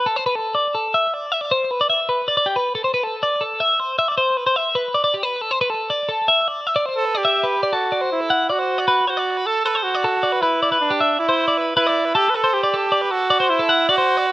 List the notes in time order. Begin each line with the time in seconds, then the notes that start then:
0.06 A4
0.16 C5
0.26 B4
0.35 A4
0.55 D5
0.75 A4
0.94 E5
1.14 D5
1.32 E5
1.41 D5
1.51 C5
1.71 B4
1.81 D5
1.90 E5
2.09 B4
2.28 D5
2.37 D5
2.46 G4
2.56 B4
2.75 A4
2.84 C5
2.94 B4
3.04 A4
3.23 D5
3.41 A4
3.60 E5
3.80 C5
3.99 E5
4.08 D5
4.18 C5
4.37 B4
4.47 C5
4.56 E5
4.75 B4
4.95 D5
5.04 D5
5.14 G4
5.23 B4
5.41 A4
5.51 C5
5.61 B4
5.70 A4
5.90 D5
6.09 A4
6.28 E5
6.48 D5
6.67 E5
6.76 D5
6.86 C5
6.96 A4
7.05 B4
7.15 G4 D5
7.25 E5
7.43 B4
7.63 D5
7.73 F#4 A4
7.92 D5
8.01 C5
8.12 E4
8.21 A4
8.30 F#5
8.50 F#4 D5
8.59 C5
8.78 D5
8.88 B4
9.07 F#4 C5
9.17 D5
9.37 B4
9.46 A4
9.65 A4 B4
9.75 C5
9.83 F#4
9.95 D5
10.04 A4
10.23 D5
10.32 B4
10.41 E4 B4
10.63 D5
10.72 B4
10.81 D4
10.91 G4
11.01 E5
11.19 E4 D5
11.29 C5
11.48 D5
11.58 B4
11.77 E4 B4
11.87 D5
12.05 B4
12.15 G4 A4
12.30 B4
12.34 A4 B4
12.44 C5
12.54 G4
12.63 D5
12.74 A4
12.92 D5
13.02 B4
13.11 F#4 A4
13.30 D5
13.40 C5
13.50 E4
13.59 A4
13.69 F#5
13.89 F#4 D5
13.98 C5
14.17 D5
14.27 B4